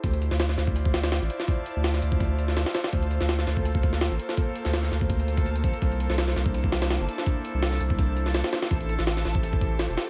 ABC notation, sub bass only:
X:1
M:4/4
L:1/16
Q:"Swing 16ths" 1/4=166
K:Dm
V:1 name="Sub bass" clef=bass
D,,3 D,,3 D,,6- D,, A,,, z2 | z3 D,,3 D,,6- D,, z3 | D,,3 D,,3 D,,6- D,, A,,, z2 | z3 D,,3 D,,8 A,,, z |
C,,3 C,,3 C,,6- C,, G,,, z2 | z3 C,,3 C,,6- C,, z3 | A,,,3 A,,,3 A,,,6- A,,, E,,, z2 |]